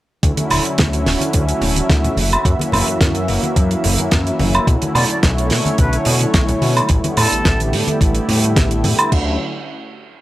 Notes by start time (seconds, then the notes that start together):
0.22 D2 D3 F#3 A3 C#4 E4 F#4 E5, kick, closed hi-hat
0.37 closed hi-hat, high conga
0.50 D1, open hi-hat, low conga, high woodblock
0.65 closed hi-hat
0.78 D2, kick, snare, closed hi-hat, high conga
0.93 closed hi-hat
1.05 D1 D3 F#3 A3 C#4 E4, snare, open hi-hat
1.21 closed hi-hat, high conga
1.33 D2, kick, closed hi-hat
1.49 closed hi-hat
1.61 D1, open hi-hat, low conga
1.76 closed hi-hat, high conga
1.90 D2, kick, snare, closed hi-hat
2.04 closed hi-hat, low conga
2.17 F#1 A#3, open hi-hat, high conga
2.32 closed hi-hat, high woodblock
2.44 F#2 E3 F#3 A#3 C#4 E4, kick, closed hi-hat
2.59 closed hi-hat, high conga
2.72 F#1, open hi-hat, low conga, high woodblock
2.88 F#2, closed hi-hat
3.01 F#2, kick, snare, closed hi-hat, high conga
3.15 closed hi-hat
3.27 F#1 E3 F#3 A#3 C#4 E4, open hi-hat
3.43 closed hi-hat, high conga
3.56 F#2, kick, closed hi-hat
3.71 closed hi-hat
3.84 F#1, open hi-hat, low conga
3.98 F#2, closed hi-hat, high conga
4.11 F#2, kick, snare, closed hi-hat
4.27 closed hi-hat
4.39 F#1, open hi-hat, high conga, low conga
4.55 closed hi-hat, high woodblock
4.66 B1 D3 F#3 A3 C#4 E4 C#5, kick, closed hi-hat
4.82 closed hi-hat, high conga
4.95 B2 D5, open hi-hat, low conga, high woodblock
5.10 D5, closed hi-hat
5.23 B1, kick, snare, closed hi-hat, high conga
5.38 closed hi-hat
5.50 B2 D3 F#3 A3 C#4 E4, snare, open hi-hat
5.66 closed hi-hat, high conga
5.78 B1 B4, kick, closed hi-hat
5.93 closed hi-hat
6.05 B2, open hi-hat, low conga
6.21 closed hi-hat, high conga
6.34 B1, kick, snare, closed hi-hat
6.48 closed hi-hat, low conga
6.62 B2, open hi-hat, high conga
6.77 closed hi-hat, high woodblock
6.88 A1 D3 G3 A3 B3 E4 G4, kick, closed hi-hat
7.04 closed hi-hat, high conga
7.17 A2 A4, open hi-hat, low conga, high woodblock
7.32 A1, closed hi-hat
7.45 A1, kick, snare, closed hi-hat, high conga
7.60 closed hi-hat
7.72 A2 D3 G3 A3 B3 E4, open hi-hat
7.87 closed hi-hat, high conga
8.01 A1, kick, closed hi-hat
8.15 closed hi-hat
8.29 A2, open hi-hat, low conga
8.44 closed hi-hat, high conga
8.56 A1, kick, snare, closed hi-hat
8.71 closed hi-hat
8.84 A2, open hi-hat, high conga, low conga
8.99 closed hi-hat, high woodblock
9.10 D2 D3 F#3 A3 C#4 E4, kick, crash